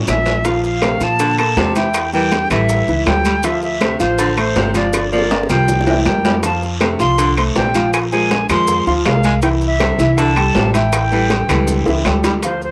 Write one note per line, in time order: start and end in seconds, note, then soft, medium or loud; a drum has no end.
0.00 0.41 E3 medium
0.00 0.42 G3 medium
0.00 0.42 C#4 medium
0.07 0.95 A#1 loud
0.07 0.47 E5 loud
0.07 high bongo soft
0.07 low bongo medium
0.07 high conga soft
0.07 low timbale medium
0.07 short guiro medium
0.07 claves medium
0.07 maracas medium
0.26 high bongo soft
0.26 high conga soft
0.26 low timbale medium
0.26 short guiro medium
0.26 maracas soft
0.45 0.76 F3 medium
0.45 0.76 F4 medium
0.45 0.76 F5 medium
0.45 0.64 F5 medium
0.45 high bongo medium
0.45 high conga soft
0.45 high timbale medium
0.45 long guiro medium
0.45 maracas medium
0.64 1.05 F5 medium
0.64 high bongo soft
0.64 high conga soft
0.64 maracas soft
0.82 1.02 C3 medium
0.82 0.98 A3 medium
0.82 0.98 A4 medium
0.82 0.98 A#4 medium
0.82 high bongo medium
0.82 high conga medium
0.82 high timbale medium
0.82 low timbale medium
0.82 short guiro medium
0.82 claves medium
0.82 maracas soft
1.00 1.53 A#2 medium
1.00 1.32 F3 medium
1.00 1.32 F4 medium
1.00 1.32 F5 medium
1.00 1.38 A5 loud
1.00 high bongo soft
1.00 high conga soft
1.00 short guiro medium
1.00 maracas medium
1.19 1.39 D3 medium
1.19 high bongo medium
1.19 high conga soft
1.19 high timbale medium
1.19 long guiro medium
1.19 maracas medium
1.38 1.70 A#3 medium
1.38 1.70 A4 medium
1.38 1.70 A#4 medium
1.38 1.74 A5 loud
1.38 high bongo soft
1.38 high conga soft
1.38 high timbale medium
1.38 claves medium
1.38 maracas soft
1.56 2.44 E2 medium
1.56 1.89 C3 medium
1.56 high bongo medium
1.56 low bongo medium
1.56 high conga medium
1.56 low timbale medium
1.56 short guiro medium
1.56 maracas soft
1.76 2.07 E3 medium
1.76 2.07 E4 medium
1.76 2.07 E5 medium
1.76 2.11 G5 medium
1.76 high conga medium
1.76 high timbale medium
1.76 short guiro medium
1.76 maracas medium
1.94 high bongo medium
1.94 high conga soft
1.94 high timbale medium
1.94 long guiro medium
1.94 claves medium
1.94 maracas medium
2.13 2.33 E3 medium
2.13 2.44 G3 medium
2.13 2.44 G4 medium
2.13 2.44 A#4 medium
2.13 2.49 G5 loud
2.13 high bongo soft
2.13 high conga soft
2.13 maracas soft
2.32 high bongo medium
2.32 high conga medium
2.32 high timbale medium
2.32 low timbale medium
2.32 short guiro medium
2.32 maracas soft
2.50 2.85 A1 medium
2.50 2.95 E3 medium
2.50 2.82 G3 medium
2.50 2.82 G4 medium
2.50 2.82 A4 medium
2.50 3.03 E5 loud
2.50 high bongo soft
2.50 high conga soft
2.50 low conga medium
2.50 high timbale medium
2.50 short guiro medium
2.50 claves medium
2.50 maracas medium
2.69 high bongo medium
2.69 high conga soft
2.69 long guiro medium
2.69 maracas medium
2.87 3.05 C#2 medium
2.87 3.04 E3 medium
2.87 3.04 E4 medium
2.87 3.04 E5 medium
2.87 high bongo soft
2.87 high conga soft
2.87 maracas soft
3.06 3.94 D2 medium
3.06 3.38 G3 medium
3.06 3.38 G4 medium
3.06 3.38 A4 medium
3.06 3.46 G5 loud
3.06 high bongo medium
3.06 low bongo medium
3.06 high conga medium
3.06 high timbale medium
3.06 low timbale medium
3.06 short guiro medium
3.06 claves medium
3.06 maracas soft
3.25 3.36 G3 medium
3.25 high conga medium
3.25 high timbale medium
3.25 short guiro medium
3.25 maracas medium
3.43 3.75 F3 medium
3.43 3.75 F4 medium
3.43 3.62 E5 medium
3.43 3.75 F5 medium
3.43 high bongo medium
3.43 high conga soft
3.43 high timbale medium
3.43 long guiro medium
3.43 maracas medium
3.62 3.98 E5 medium
3.62 high bongo soft
3.62 high conga soft
3.62 maracas soft
3.81 4.01 C3 medium
3.81 3.97 A3 medium
3.81 3.97 A4 medium
3.81 3.97 C5 medium
3.81 high bongo medium
3.81 high conga medium
3.81 high timbale medium
3.81 low timbale medium
3.81 short guiro medium
3.81 claves medium
3.81 maracas soft
4.00 4.52 A1 medium
4.00 4.31 F3 medium
4.00 4.31 F4 medium
4.00 4.35 C5 medium
4.00 4.31 F5 medium
4.00 high bongo soft
4.00 high conga soft
4.00 short guiro medium
4.00 maracas medium
4.18 4.39 D3 medium
4.18 high bongo medium
4.18 high conga soft
4.18 high timbale medium
4.18 long guiro medium
4.18 maracas medium
4.37 4.68 A3 medium
4.37 4.68 A4 medium
4.37 4.68 C5 medium
4.37 4.73 C5 medium
4.37 high bongo soft
4.37 high conga soft
4.37 high timbale medium
4.37 claves medium
4.37 maracas soft
4.56 5.44 G1 medium
4.56 4.87 C3 medium
4.56 high bongo medium
4.56 low bongo medium
4.56 high conga medium
4.56 low timbale medium
4.56 short guiro medium
4.56 maracas soft
4.74 5.05 F3 medium
4.74 5.05 F4 medium
4.74 5.10 D5 medium
4.74 5.05 F5 medium
4.74 high conga medium
4.74 high timbale medium
4.74 short guiro medium
4.74 maracas medium
4.93 high bongo medium
4.93 high timbale medium
4.93 long guiro medium
4.93 claves medium
4.93 maracas medium
5.12 5.32 F3 medium
5.12 5.43 A#3 medium
5.12 5.43 A#4 medium
5.12 5.43 D5 medium
5.12 5.48 D5 medium
5.12 high conga soft
5.12 maracas soft
5.18 high bongo medium
5.31 high conga medium
5.31 high timbale loud
5.31 short guiro medium
5.31 maracas soft
5.43 high bongo medium
5.49 6.02 C2 medium
5.49 5.94 F3 medium
5.49 5.80 G3 medium
5.49 5.80 G4 medium
5.49 5.81 A#4 medium
5.49 6.03 G5 medium
5.49 high conga soft
5.49 low conga medium
5.49 short guiro medium
5.49 claves medium
5.49 maracas medium
5.68 low bongo medium
5.68 high conga soft
5.68 low conga medium
5.68 long guiro medium
5.68 maracas medium
5.81 low bongo medium
5.87 6.02 E3 medium
5.87 6.03 E4 medium
5.87 6.03 E5 medium
5.87 high conga soft
5.87 low timbale medium
5.87 maracas soft
5.93 low bongo medium
6.05 6.94 F2 medium
6.05 6.36 G3 medium
6.05 6.37 G4 medium
6.05 6.37 A#4 medium
6.05 6.41 G5 medium
6.05 low bongo medium
6.05 high conga medium
6.05 low timbale medium
6.05 short guiro medium
6.05 claves medium
6.05 maracas soft
6.25 6.35 G3 medium
6.25 high conga medium
6.25 low timbale loud
6.25 short guiro medium
6.25 maracas medium
6.31 low bongo medium
6.43 6.74 F3 medium
6.43 6.74 F4 medium
6.43 6.74 F5 medium
6.43 6.61 A5 medium
6.43 high bongo medium
6.43 high timbale medium
6.43 long guiro medium
6.43 maracas medium
6.62 high bongo soft
6.62 high conga soft
6.62 maracas soft
6.80 7.00 C3 medium
6.80 6.96 A3 medium
6.80 6.96 A4 medium
6.80 6.97 C5 medium
6.80 high bongo medium
6.80 high conga medium
6.80 high timbale medium
6.80 low timbale medium
6.80 short guiro medium
6.80 claves medium
6.80 maracas soft
6.99 7.52 C2 medium
6.99 7.30 F3 medium
6.99 7.31 F4 medium
6.99 7.31 F5 medium
6.99 7.35 C6 loud
6.99 high bongo soft
6.99 high conga soft
6.99 short guiro medium
6.99 maracas medium
7.18 7.38 D3 medium
7.18 high bongo medium
7.18 high conga soft
7.18 high timbale medium
7.18 long guiro medium
7.18 maracas medium
7.37 7.68 A3 medium
7.37 7.68 A4 medium
7.37 7.68 C5 medium
7.37 7.43 C6 medium
7.37 high bongo soft
7.37 high timbale medium
7.37 claves medium
7.37 maracas soft
7.55 8.43 A#1 medium
7.55 7.87 C3 medium
7.55 7.91 G5 medium
7.55 high bongo medium
7.55 low bongo medium
7.55 high conga medium
7.55 low timbale medium
7.55 short guiro medium
7.55 maracas soft
7.74 8.05 F3 medium
7.74 8.06 F4 medium
7.74 8.06 F5 medium
7.74 high conga medium
7.74 high timbale medium
7.74 short guiro medium
7.74 maracas medium
7.93 7.99 G#5 loud
7.93 high bongo medium
7.93 high conga soft
7.93 high timbale medium
7.93 long guiro medium
7.93 claves medium
7.93 maracas medium
8.12 8.32 F3 medium
8.12 8.43 G#3 medium
8.12 8.43 G#4 medium
8.12 8.43 A#4 medium
8.12 8.47 G#5 medium
8.12 high bongo soft
8.12 high conga soft
8.12 maracas soft
8.31 high bongo medium
8.31 high conga loud
8.31 high timbale medium
8.31 low timbale medium
8.31 short guiro medium
8.31 maracas soft
8.49 8.84 F2 medium
8.49 8.94 F3 medium
8.49 8.80 G#3 medium
8.49 8.80 G#4 medium
8.49 8.80 A#4 medium
8.49 8.85 C6 loud
8.49 high bongo soft
8.49 high conga soft
8.49 low conga medium
8.49 high timbale medium
8.49 short guiro medium
8.49 claves medium
8.49 maracas medium
8.67 high bongo medium
8.67 high conga soft
8.67 low conga medium
8.67 long guiro medium
8.67 maracas medium
8.86 9.04 D2 medium
8.86 9.02 F3 medium
8.86 9.02 F4 medium
8.86 9.02 F5 medium
8.86 8.93 C6 medium
8.86 high bongo soft
8.86 high conga soft
8.86 maracas soft
9.05 9.93 C2 medium
9.05 9.36 G#3 medium
9.05 9.36 G#4 medium
9.05 9.36 A#4 medium
9.05 9.40 F5 medium
9.05 high bongo medium
9.05 low bongo medium
9.05 high conga medium
9.05 high timbale medium
9.05 low timbale medium
9.05 short guiro medium
9.05 claves medium
9.05 maracas soft
9.24 9.34 G#3 medium
9.24 high conga medium
9.24 high timbale medium
9.24 short guiro medium
9.24 maracas medium
9.42 9.73 E3 medium
9.42 9.74 E4 medium
9.42 9.74 E5 medium
9.42 9.49 G5 medium
9.42 high bongo medium
9.42 high timbale medium
9.42 long guiro medium
9.42 maracas medium
9.61 high bongo soft
9.61 high conga soft
9.61 maracas soft
9.67 10.19 E5 medium
9.80 10.00 C3 medium
9.80 9.96 G3 medium
9.80 9.96 G4 medium
9.80 9.96 A4 medium
9.80 high bongo medium
9.80 high conga medium
9.80 high timbale medium
9.80 low timbale medium
9.80 short guiro medium
9.80 claves medium
9.80 maracas soft
9.98 10.51 C2 loud
9.98 10.30 E3 medium
9.98 10.30 E4 medium
9.98 10.30 E5 medium
9.98 high bongo soft
9.98 high conga soft
9.98 short guiro medium
9.98 maracas medium
10.17 10.38 D3 medium
10.17 10.73 A5 loud
10.17 high bongo medium
10.17 high conga soft
10.17 high timbale medium
10.17 long guiro medium
10.17 maracas medium
10.36 10.67 G3 medium
10.36 10.68 G4 medium
10.36 10.68 A4 medium
10.36 high bongo soft
10.36 high conga soft
10.36 high timbale medium
10.36 claves medium
10.36 maracas soft
10.55 11.43 A1 medium
10.55 10.75 C3 medium
10.55 high bongo medium
10.55 low bongo medium
10.55 high conga medium
10.55 low timbale medium
10.55 short guiro medium
10.55 maracas soft
10.74 11.05 E3 medium
10.74 11.05 E4 medium
10.74 11.05 E5 medium
10.74 12.01 G5 medium
10.74 high conga medium
10.74 high timbale medium
10.74 short guiro medium
10.74 maracas medium
10.93 high bongo medium
10.93 high timbale medium
10.93 long guiro medium
10.93 claves medium
10.93 maracas medium
11.11 11.31 E3 medium
11.11 11.43 G3 medium
11.11 11.43 G4 medium
11.11 11.43 A4 medium
11.11 high bongo soft
11.11 high conga soft
11.11 maracas soft
11.30 high bongo medium
11.30 high conga medium
11.30 high timbale medium
11.30 low timbale medium
11.30 short guiro medium
11.30 maracas soft
11.49 11.84 C#2 loud
11.49 11.94 E3 medium
11.49 11.80 G3 medium
11.49 11.81 G4 medium
11.49 11.81 A4 medium
11.49 high bongo soft
11.49 high conga soft
11.49 low conga medium
11.49 high timbale medium
11.49 short guiro medium
11.49 claves medium
11.49 maracas medium
11.67 high bongo medium
11.67 high conga soft
11.67 low conga medium
11.67 long guiro medium
11.67 maracas medium
11.86 12.04 C#2 medium
11.86 12.02 E3 medium
11.86 12.02 E4 medium
11.86 12.03 E5 medium
11.86 high bongo medium
11.86 high conga soft
11.86 maracas soft
12.05 12.71 D2 medium
12.05 12.37 G3 medium
12.05 12.37 G4 medium
12.05 12.37 A4 medium
12.05 high conga medium
12.05 high timbale medium
12.05 low timbale medium
12.05 short guiro medium
12.05 claves medium
12.05 maracas soft
12.24 12.34 G3 medium
12.24 low bongo medium
12.24 high conga medium
12.24 high timbale medium
12.24 short guiro medium
12.24 maracas medium
12.43 12.71 F3 medium
12.43 12.71 F4 medium
12.43 12.61 C5 medium
12.43 12.71 F5 medium
12.43 high bongo medium
12.43 high conga soft
12.43 high timbale medium
12.43 maracas medium
12.61 12.71 C5 medium
12.61 high bongo soft
12.61 high conga soft
12.61 maracas soft